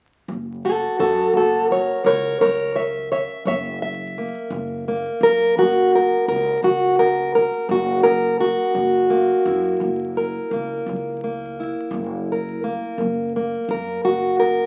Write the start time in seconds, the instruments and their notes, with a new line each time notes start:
0.28 upright bass F#1, steel-string acoustic guitar F#2
0.65 steel-string acoustic guitar F#4 A4
0.99 upright bass F#2, steel-string acoustic guitar F#4 A4
1.34 upright bass F#1, steel-string acoustic guitar F#2 F#4 A4
1.71 steel-string acoustic guitar A#4 C#5
2.04 upright bass C#2, steel-string acoustic guitar A#4 C#5
2.41 upright bass C#2, steel-string acoustic guitar F#2 A#4 C#5
2.76 steel-string acoustic guitar C#5 E5
3.12 steel-string acoustic guitar C#5 E5
3.45 upright bass F#1, steel-string acoustic guitar F#2 C#5 E5
3.82 steel-string acoustic guitar E5
4.18 steel-string acoustic guitar A#3
4.50 upright bass F#1, steel-string acoustic guitar F#2
4.88 steel-string acoustic guitar A#3
5.21 upright bass F#2, steel-string acoustic guitar A#4
5.57 upright bass F#1, steel-string acoustic guitar F#2 F#4
5.95 steel-string acoustic guitar A#4
6.28 upright bass C#2, steel-string acoustic guitar A#4
6.62 upright bass C#2, steel-string acoustic guitar F#2 F#4
6.99 steel-string acoustic guitar A#4
7.35 steel-string acoustic guitar A#4
7.69 upright bass F#1, steel-string acoustic guitar F#2 F#4
8.03 steel-string acoustic guitar A#4
8.40 steel-string acoustic guitar F#4
8.74 upright bass F#1, steel-string acoustic guitar F#2
9.10 steel-string acoustic guitar A#3
9.45 upright bass F#2, steel-string acoustic guitar E4
9.80 upright bass F#1, steel-string acoustic guitar F#2
10.17 steel-string acoustic guitar A#4
10.51 upright bass C#2, steel-string acoustic guitar A#3
10.86 upright bass C#2, steel-string acoustic guitar F#2
11.24 steel-string acoustic guitar A#3
11.60 steel-string acoustic guitar E4
11.91 upright bass F#1, steel-string acoustic guitar F#2
12.32 steel-string acoustic guitar A#4
12.64 steel-string acoustic guitar A#3
12.98 upright bass F#1, steel-string acoustic guitar F#2
13.36 steel-string acoustic guitar A#3
13.68 upright bass F#2, steel-string acoustic guitar A#4
14.05 upright bass F#1, steel-string acoustic guitar F#2 F#4
14.40 steel-string acoustic guitar A#4